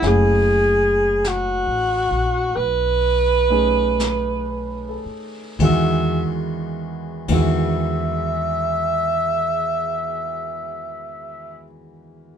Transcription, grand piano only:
0.00 2.56 A3 medium
0.00 2.56 C#4 soft
0.00 2.56 E4 soft
0.00 2.56 G#4 medium
0.00 0.16 F#5 medium
3.50 5.59 A3 soft
3.50 5.60 C#4 soft
3.50 5.59 D#4 soft
3.50 5.60 G#4 medium
4.02 5.28 B4 soft
4.89 6.04 A4 soft
5.60 6.27 E2 medium
5.60 6.28 D#3 medium
5.60 6.28 E3 soft
5.60 6.28 G#3 medium
5.60 6.28 F#4 medium
7.29 11.62 E2 medium
7.29 11.65 D#3 soft
7.29 11.64 E3 medium
7.29 11.64 G#3 soft
7.29 11.65 F#4 medium

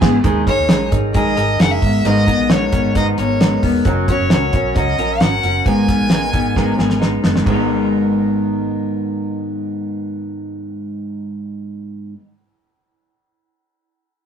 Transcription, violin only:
0.48 0.89 C#5 loud
1.15 1.62 D#5 medium
1.61 1.73 F#5 medium
1.71 2.08 E5 medium
2.06 2.52 D#5 loud
2.51 2.95 C#5 medium
2.97 3.06 D#5 medium
3.19 3.60 C#5 medium
4.08 4.71 C#5 medium
4.77 5.22 D#5 medium
5.20 5.65 F#5 medium
5.67 6.98 G#5 loud

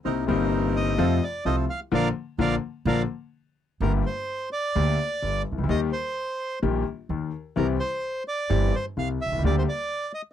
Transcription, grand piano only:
0.05 0.25 C2 medium
0.05 0.25 C3 medium
0.05 0.25 G3 soft
0.05 0.25 A#3 soft
0.05 0.25 D#4 medium
0.26 0.95 G1 medium
0.26 0.95 G2 medium
0.26 0.94 C3 medium
0.26 0.95 G3 medium
0.26 0.95 A#3 medium
0.30 0.96 D#4 medium
0.98 1.18 F2 medium
0.98 1.18 C3 medium
0.98 1.18 F3 medium
0.98 1.18 A3 medium
0.98 1.18 F4 medium
1.45 1.65 C2 medium
1.45 1.65 C3 medium
1.45 1.65 F3 soft
1.45 1.65 A3 soft
1.45 1.65 F4 medium
1.92 2.07 D3 medium
1.92 2.07 F3 medium
1.92 2.07 A#3 medium
2.39 2.54 D3 medium
2.39 2.54 F3 medium
2.39 2.54 A#3 medium
2.87 3.02 D3 medium
2.87 3.02 F3 medium
2.87 3.02 A#3 medium
3.82 4.01 G1 medium
3.82 4.01 G2 medium
3.82 4.01 D3 medium
3.82 4.02 A3 medium
3.82 4.02 A#3 medium
3.82 4.02 G4 medium
4.76 4.95 D2 medium
4.76 4.95 D3 medium
4.76 4.95 A3 medium
4.76 4.96 A#3 medium
4.76 4.96 G4 medium
5.23 5.42 G1 medium
5.23 5.42 G2 medium
5.52 5.58 C2 soft
5.58 5.64 C#2 medium
5.64 5.69 D2 medium
5.69 5.89 D#2 medium
5.69 5.89 D#3 medium
5.69 5.89 G3 medium
5.69 5.89 A#3 medium
5.69 5.89 G4 medium
6.62 6.82 A#1 medium
6.62 6.82 A#2 medium
6.62 6.82 D#3 medium
6.62 6.82 G3 medium
6.62 6.83 A#3 medium
6.62 6.82 G4 medium
7.10 7.30 D#2 medium
7.10 7.30 D#3 medium
7.56 7.76 C2 medium
7.56 7.76 C3 medium
7.56 7.76 E3 medium
7.56 7.76 G3 medium
7.56 7.76 C4 medium
7.56 7.76 G4 medium
8.49 8.70 G1 medium
8.49 8.69 G2 medium
8.49 8.69 E3 medium
8.49 8.70 G3 medium
8.49 8.70 C4 medium
8.49 8.70 G4 medium
8.97 9.17 C2 medium
8.97 9.17 C3 medium
9.27 9.32 B1 soft
9.33 9.38 C2 medium
9.39 9.44 C#2 medium
9.44 9.64 D2 medium
9.44 9.64 D3 medium
9.44 9.64 G3 medium
9.44 9.64 A#3 medium
9.44 9.64 G4 medium

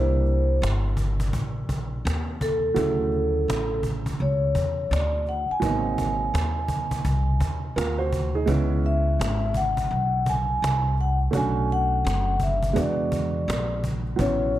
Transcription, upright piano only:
0.00 2.71 G3 medium
0.00 2.72 A#3 medium
0.00 2.72 D4 medium
0.00 2.73 E4 medium
2.74 5.58 C#3 medium
2.74 5.57 F#3 medium
2.74 5.58 A3 medium
2.78 5.59 E4 medium
5.60 8.43 F#3 medium
5.60 8.43 A#3 medium
5.60 5.71 B3 soft
5.64 7.73 D#4 medium
5.69 8.47 C4 soft
7.76 7.98 F4 soft
7.76 7.98 A#4 medium
7.98 8.33 F#4 medium
7.98 8.33 C5 medium
8.35 8.69 D#4 soft
8.35 8.69 G#4 medium
8.46 11.28 G#3 medium
8.46 11.29 B3 medium
8.46 11.30 C#4 medium
8.46 11.30 E4 medium
11.31 12.72 A3 medium
11.31 12.73 C#4 medium
11.31 12.73 D4 medium
11.35 12.74 F#4 medium
12.73 14.15 G#3 medium
12.73 14.15 B3 medium
12.73 14.16 D4 medium
12.73 14.17 F#4 medium
14.16 14.59 F#3 medium
14.16 14.59 B3 medium
14.16 14.59 C#4 medium
14.20 14.59 E4 medium

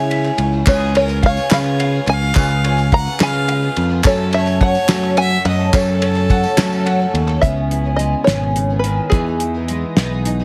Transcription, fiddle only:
0.00 0.43 C#5 medium
0.70 0.95 G#4 medium
0.98 1.23 A#4 medium
1.26 1.51 C#5 medium
1.53 2.05 C#5 medium
2.11 2.90 F5 medium
2.95 3.20 F#5 loud
3.24 3.82 F5 medium
4.07 4.32 A4 medium
4.37 4.61 C#5 medium
4.64 5.15 C#5 loud
5.20 5.45 E5 medium
5.48 5.73 D#5 medium
5.77 7.12 A4 medium

